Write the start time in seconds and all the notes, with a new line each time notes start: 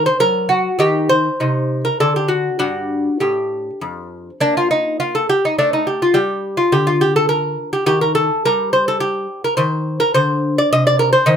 Already playing: A3
0.06 C5
0.20 F#3 A#4
0.49 F#4
0.79 D#3 D#4 G4
1.09 C5
1.40 C3 D#4
1.85 A#4
2.00 D3 D4 A4
2.16 G4
2.28 F#4
2.59 G2 D4 F#4
3.20 A2 G4
3.81 F2
4.41 A#3 D4
4.57 F4
4.71 D#4
5.00 F4
5.15 A4
5.29 G4
5.45 D#4
5.58 A3 D4
5.73 D#4
5.87 G4
6.02 F4
6.14 G3 G4
6.57 F4
6.72 D3 G4
6.87 F4
7.01 G4
7.16 A4
7.29 A#4
7.73 G4
7.86 D#3 G4
8.01 A#4
8.15 A4
8.45 G3 A#4
8.73 C5
8.88 A4
9.00 G4
9.44 A#4
9.57 D#3 C5
10.00 A#4
10.14 D3 C5
10.58 D5
10.72 C3 D#5
10.87 D5
10.99 A#4
11.13 C5
11.26 D#3 D#4